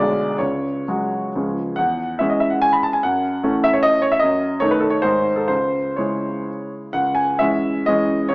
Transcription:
Already playing: B1 D3 G#3 G#4 D5
0.38 C#2 C#5
0.88 F#3 G#3 F#4
1.35 C#2 F3 G#3 C#4
1.76 E2 F#5
2.19 E3 G#3 C#4 E5
2.30 D#5
2.40 E5
2.50 F#5
2.62 G#5
2.73 B5
2.83 A5
2.93 G#5
3.03 F#2 F#5
3.43 E3 A3 C#4
3.64 E5
3.73 C#5
3.83 D#5
4.02 C#5
4.12 E5
4.19 F#2 D#5
4.60 D#3 A3 D#4 C#5
4.71 B4
4.80 A4
4.90 C#5
5.02 G#2 D#3 G#3 D#4 C5
5.36 A4
5.48 C#2 C5
5.96 C#3 G#3 E4 C#5
6.93 C#2 F#5
7.15 G#5
7.39 E3 G#3 C#4 E5
7.86 E3 G#3 C#4 D#5
8.29 E2 C#5

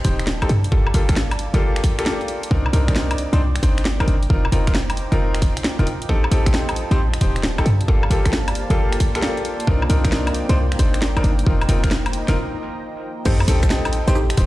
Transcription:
Already playing: G4 C5 D#5 G5 A5 C6
0.04 D#1 C4 D#4 G4 C5, kick, open hi-hat
0.19 finger snap, closed hi-hat
0.27 snare
0.42 C4 D#4 G4 A4, kick, closed hi-hat, high woodblock
0.49 G2 F4 D5 F5 D6, open hi-hat
0.58 A#3
0.64 closed hi-hat
0.72 G1 A#3 F4 G4 A4, kick
0.87 high woodblock
0.94 G1 A#3 F4 G4 A4, open hi-hat
1.09 A#3 F4 G4 A4, finger snap, kick, closed hi-hat
1.16 snare
1.31 closed hi-hat, high woodblock
1.39 open hi-hat
1.54 G1 A#3 F4 G4 A4, closed hi-hat
1.76 finger snap, closed hi-hat
1.84 kick, open hi-hat
1.99 A#3 F4 G4 A4, finger snap, closed hi-hat
2.06 snare
2.21 closed hi-hat
2.28 open hi-hat
2.43 closed hi-hat
2.51 C2 C4 D4 D#4 A#4 G5, kick
2.66 A#5, high woodblock
2.73 C2 C4 D4 D#4 A#4, open hi-hat
2.88 C4 D4 D#4 A#4, finger snap, kick, closed hi-hat
2.96 D6, snare
3.11 closed hi-hat, high woodblock
3.18 open hi-hat
3.33 C2 C4 D4 D#4 C5, closed hi-hat
3.56 finger snap, closed hi-hat
3.63 G1 C4 D4 D#4 C5, kick, open hi-hat
3.78 finger snap, closed hi-hat
3.85 snare
4.00 C4 D4 D#4 A#4, kick, closed hi-hat, high woodblock
4.08 G1, open hi-hat
4.23 closed hi-hat
4.30 F1 C4 D#4 F4 A#4 C5, kick
4.45 D#5, high woodblock
4.52 F1 C4 D#4 F4 A#4, open hi-hat
4.67 C4 D#4 F4 A#4, finger snap, kick, closed hi-hat
4.75 snare
4.90 closed hi-hat, high woodblock
4.97 open hi-hat
5.12 F1 C4 D#4 F4 A#4, closed hi-hat
5.35 finger snap, closed hi-hat
5.42 D#1, kick, open hi-hat
5.57 finger snap, closed hi-hat
5.64 snare
5.79 D#1 C4 D#4 F4 A#4, closed hi-hat
5.87 open hi-hat
6.02 closed hi-hat
6.09 A1 C4 D#4 G4 A4 C5 A5, kick
6.24 high woodblock
6.31 A1 C4 D#4 G4 A4, open hi-hat
6.46 C4 D#4 G4 A4 C5, finger snap, kick, closed hi-hat
6.54 snare
6.69 closed hi-hat, high woodblock
6.76 open hi-hat
6.81 A5
6.91 A1 C4 D#4 G4 C5, closed hi-hat
7.14 finger snap, closed hi-hat
7.21 D#1 C4 D#4 G4 C5, kick, open hi-hat
7.36 finger snap, closed hi-hat
7.43 snare
7.58 C4 D#4 G4 A4, kick, closed hi-hat, high woodblock
7.66 G2 A#3 F4 D5 F5 A5, open hi-hat
7.81 A#3, closed hi-hat
7.88 G1 A#3 F4 G4 A4, kick
8.03 high woodblock
8.10 G1 A#3 F4 G4 A4, open hi-hat
8.25 A#3 F4 G4 A4, finger snap, kick, closed hi-hat
8.33 snare
8.48 closed hi-hat, high woodblock
8.55 open hi-hat
8.70 G1 A#3 F4 G4 A4, closed hi-hat
8.93 finger snap, closed hi-hat
9.00 kick, open hi-hat
9.15 A#3 F4 G4 A4, finger snap, closed hi-hat
9.22 snare
9.37 closed hi-hat
9.45 open hi-hat
9.60 closed hi-hat
9.67 C2 C4 D4 D#4 A#4 C5 G5, kick
9.82 high woodblock
9.90 C2 C4 D4 D#4 A#4, open hi-hat
9.95 A#5
10.04 C4 D4 D#4 A#4 D6, finger snap, kick, closed hi-hat
10.12 snare
10.27 closed hi-hat, high woodblock
10.34 open hi-hat
10.49 C2 C4 D4 D#4 C5, closed hi-hat
10.72 finger snap, closed hi-hat
10.79 G1 C4 D4 D#4 C5, kick, open hi-hat
10.94 finger snap, closed hi-hat
11.02 snare
11.17 C4 D4 D#4 A#4, kick, closed hi-hat, high woodblock
11.24 G1, open hi-hat
11.39 closed hi-hat
11.46 F1 C4 D#4 F4 A#4 C5 D#5, kick
11.61 closed hi-hat, high woodblock
11.69 F1 C4 D#4 F4 A#4, open hi-hat
11.84 C4 D#4 F4 A#4, finger snap, kick, closed hi-hat
11.91 snare
12.06 closed hi-hat, high woodblock
12.13 open hi-hat
12.28 F1 C4 D#4 F4 A#4, snare, closed hi-hat
13.25 A1 C4 D#4 G4 A4 C5 D#5 G5, kick, crash, sub drop, shaker
13.40 high woodblock, shaker
13.48 A1 C4 D#4 G4 A4, open hi-hat
13.63 C4 D#4 A4 C5 A5, finger snap, kick, closed hi-hat, shaker
13.69 C5, snare, shaker
13.85 closed hi-hat, high woodblock, shaker
13.93 open hi-hat
14.08 A1 C4 D#4 G4 C5, closed hi-hat, shaker
14.15 D#4 G4, shaker
14.30 finger snap, closed hi-hat, shaker
14.37 D#1 C4 D#4 G4 C5, kick, open hi-hat

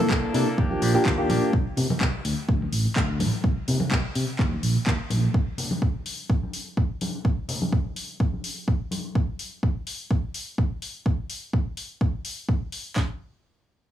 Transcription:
0.00 A#3 D4 E4 A4
0.10 C2 E3 A#3 D4 A4, kick, clap, shaker
0.24 shaker
0.34 C3 E3 A#3 D4 E4 A4, open hi-hat, shaker
0.46 A#3 D4 A4, shaker
0.57 D#2 F3 A#3 D4 G4, kick, shaker
0.70 A#3 D4 F4 G4, high conga, shaker
0.81 A#1 F3 A#3 D4 G4, open hi-hat, shaker
0.94 A#3 D4 F4 G4, muted fingered electric bass stroke, shaker
1.05 D#2 F3 A#3 D4 G4, kick, clap
1.18 A#3 D4 F4 G4, shaker
1.29 A#1 F3 A#3 D4 G4, open hi-hat, high conga, shaker
1.42 shaker
1.53 C2, kick, shaker
1.66 shaker
1.77 C3, open hi-hat, low conga, shaker
1.90 muted fingered electric bass stroke, high conga, shaker
2.01 C2, kick, clap
2.14 shaker
2.25 D2, open hi-hat, shaker
2.38 shaker
2.49 D2, kick, shaker
2.61 high conga, shaker
2.73 A1, open hi-hat, shaker
2.85 muted fingered electric bass stroke, shaker
2.96 D2, kick, clap
3.20 A1, open hi-hat, high conga, shaker
3.33 shaker
3.44 C2, kick, shaker
3.56 shaker
3.68 C3, open hi-hat, low conga, shaker
3.80 muted fingered electric bass stroke, high conga, shaker
3.91 C2, kick, clap
4.04 shaker
4.15 C3, open hi-hat, shaker
4.28 shaker
4.39 D#2, kick, clap
4.52 high conga, shaker
4.63 A#1, open hi-hat, shaker
4.75 muted fingered electric bass stroke, shaker
4.87 D#2, kick, clap
5.00 shaker
5.10 A#1, open hi-hat, high conga, shaker
5.24 shaker
5.34 kick, shaker
5.48 shaker
5.58 open hi-hat, low conga, shaker
5.71 high conga, shaker
5.82 kick, shaker
5.95 shaker
6.06 open hi-hat, shaker
6.19 shaker
6.30 kick
6.42 high conga, shaker
6.53 open hi-hat, shaker
6.67 shaker
6.77 kick
6.90 shaker
7.01 open hi-hat, high conga, shaker
7.14 shaker
7.25 kick, shaker
7.38 shaker
7.49 open hi-hat, low conga, shaker
7.61 high conga, shaker
7.72 kick, shaker
7.86 shaker
7.96 open hi-hat, shaker
8.10 shaker
8.20 kick, shaker
8.33 high conga, shaker
8.44 open hi-hat, shaker
8.57 shaker
8.68 kick
8.81 shaker
8.91 open hi-hat, high conga, shaker
9.05 shaker
9.15 kick
9.39 open hi-hat
9.63 kick
9.87 open hi-hat
10.11 kick
10.34 open hi-hat
10.58 kick
10.82 open hi-hat
11.06 kick
11.30 open hi-hat
11.53 kick
11.77 open hi-hat
12.01 kick
12.25 open hi-hat
12.49 kick
12.72 open hi-hat
12.96 kick, snare, clap

